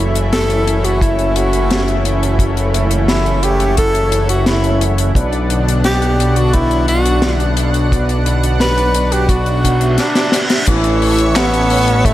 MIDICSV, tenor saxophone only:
0, 0, Header, 1, 2, 480
1, 0, Start_track
1, 0, Key_signature, 3, "minor"
1, 0, Tempo, 689655
1, 1669, Time_signature, 4, 2, 24, 8
1, 8447, End_track
2, 0, Start_track
2, 0, Title_t, "Tenor saxophone"
2, 0, Program_c, 0, 66
2, 228, Note_on_c, 0, 69, 112
2, 590, Note_on_c, 0, 66, 97
2, 600, Note_off_c, 0, 69, 0
2, 710, Note_on_c, 0, 64, 94
2, 720, Note_off_c, 0, 66, 0
2, 950, Note_on_c, 0, 66, 91
2, 960, Note_off_c, 0, 64, 0
2, 1430, Note_off_c, 0, 66, 0
2, 2149, Note_on_c, 0, 64, 88
2, 2391, Note_on_c, 0, 67, 100
2, 2402, Note_off_c, 0, 64, 0
2, 2627, Note_off_c, 0, 67, 0
2, 2631, Note_on_c, 0, 69, 108
2, 2965, Note_off_c, 0, 69, 0
2, 2990, Note_on_c, 0, 66, 88
2, 3101, Note_off_c, 0, 66, 0
2, 3110, Note_on_c, 0, 64, 83
2, 3444, Note_off_c, 0, 64, 0
2, 4070, Note_on_c, 0, 67, 110
2, 4432, Note_on_c, 0, 66, 98
2, 4442, Note_off_c, 0, 67, 0
2, 4551, Note_on_c, 0, 64, 102
2, 4561, Note_off_c, 0, 66, 0
2, 4787, Note_off_c, 0, 64, 0
2, 4791, Note_on_c, 0, 66, 97
2, 5242, Note_off_c, 0, 66, 0
2, 5990, Note_on_c, 0, 71, 108
2, 6350, Note_on_c, 0, 67, 97
2, 6360, Note_off_c, 0, 71, 0
2, 6469, Note_on_c, 0, 66, 102
2, 6479, Note_off_c, 0, 67, 0
2, 6946, Note_off_c, 0, 66, 0
2, 6950, Note_on_c, 0, 62, 85
2, 7285, Note_off_c, 0, 62, 0
2, 7429, Note_on_c, 0, 52, 100
2, 7907, Note_on_c, 0, 59, 111
2, 7918, Note_off_c, 0, 52, 0
2, 8387, Note_on_c, 0, 57, 112
2, 8397, Note_off_c, 0, 59, 0
2, 8447, Note_off_c, 0, 57, 0
2, 8447, End_track
0, 0, End_of_file